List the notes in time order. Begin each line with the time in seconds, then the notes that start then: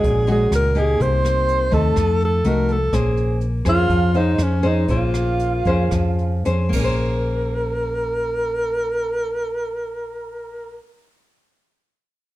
Already playing: G#3 C#4 F#4 G#4 G#5
0.04 A#1 A#2, kick, closed hi-hat
0.27 G#3 C#4 F#4 G#5, closed hi-hat
0.31 G#4
0.51 C#2 A#5, cross-stick, closed hi-hat
0.55 A#4
0.75 A#3 D#4 G4 G#4 G#5, closed hi-hat
1.00 C2 C3 C5 C6, kick, closed hi-hat
1.25 cross-stick, closed hi-hat
1.49 closed hi-hat
1.71 D#2 A3 D#4 A4 A5, kick, closed hi-hat
1.96 F2 F3, kick, cross-stick, closed hi-hat
2.20 A5, closed hi-hat
2.25 A4
2.44 C2 A3 D#4 F#4 A#4 A#5, closed hi-hat
2.69 A4 A5, closed hi-hat
2.93 A#1 A#3 C#4 G#4 C5 G#5, kick, cross-stick, closed hi-hat
3.17 closed hi-hat
3.41 closed hi-hat
3.65 F2 C#4 F4 G#4 C5 F5, kick, cross-stick, closed hi-hat
3.90 F2 F3, kick, closed hi-hat
4.14 C#4 D#4 G#4 C5 D#5, closed hi-hat
4.38 F2 C#5, cross-stick, closed hi-hat
4.43 C#4
4.63 C#4 G#4 C5 D#5, closed hi-hat
4.67 D#4
4.88 A#1 A#3 C#4 F4 G#4 C5 F5, kick, closed hi-hat
5.14 cross-stick, closed hi-hat
5.39 closed hi-hat
5.65 F2 C#4 G#4 C5, kick, closed hi-hat
5.91 F2 F3, kick, cross-stick, closed hi-hat
6.19 closed hi-hat
6.45 F2 C#4 G#4 C5, closed hi-hat
6.69 A#1 A#3 A#5, crash
6.73 C#4 A#4, kick
6.79 G#4
6.84 C5